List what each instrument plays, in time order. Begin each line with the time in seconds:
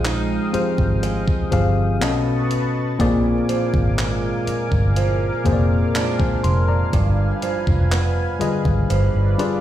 Already playing: fingered electric bass A#1, tine electric piano F3 C4 G4 G#4 D#5, steel-string acoustic guitar F3 G#3, analog synth pad G#3 F5 G5 D#6
0.05 steel-string acoustic guitar D#4, clap, closed hi-hat
0.53 tine electric piano F3 C4 G4 G#4 C5, muted fingered electric bass stroke, closed hi-hat
0.78 fingered electric bass G#1, kick
1.03 steel-string acoustic guitar G#3, closed hi-hat
1.28 kick
1.51 fingered electric bass G1, tine electric piano F3 C4 G4 G#4 F5, kick, closed hi-hat
2.01 fingered electric bass B1, tine electric piano B2 B3 C#4 A4 D#5, steel-string acoustic guitar B2, analog synth pad B4 D#5 A5 C#6, clap, closed hi-hat
2.51 fingered electric bass G#1, closed hi-hat
2.99 fingered electric bass A#1, tine electric piano A#2 A#3 C4 G#4 D5, steel-string acoustic guitar A#2, analog synth pad A#4 F5 G#5 D6, kick, closed hi-hat
3.49 steel-string acoustic guitar F3, closed hi-hat
3.74 fingered electric bass G#1, kick
3.98 steel-string acoustic guitar G#3, clap, closed hi-hat
4.47 muted fingered electric bass stroke, closed hi-hat
4.72 fingered electric bass G1, kick
4.96 steel-string acoustic guitar F3, closed hi-hat
5.44 fingered electric bass F1, tine electric piano A#2 A#3 C4 G#4 C5, kick, closed hi-hat
5.53 tine electric piano D5
5.95 steel-string acoustic guitar F3 G#3 D4, clap, closed hi-hat
6.19 tine electric piano C5 G#5, kick
6.44 fingered electric bass F1, tine electric piano C6, closed hi-hat
6.68 tine electric piano D5 A#5
6.93 fingered electric bass G1, steel-string acoustic guitar G2, analog synth pad B4 G#5, kick, closed hi-hat
7.42 steel-string acoustic guitar F3, closed hi-hat
7.67 fingered electric bass F1, kick
7.92 steel-string acoustic guitar B3, clap, closed hi-hat
8.39 tine electric piano D3 G3 F4 G#4 B4 D#5, muted fingered electric bass stroke, closed hi-hat
8.65 fingered electric bass G#1, kick
8.90 fingered electric bass G1, steel-string acoustic guitar F3, analog synth pad D5, closed hi-hat
9.14 fingered electric bass G1
9.38 tine electric piano G3 D4 F4 G#4 B4 D5, closed hi-hat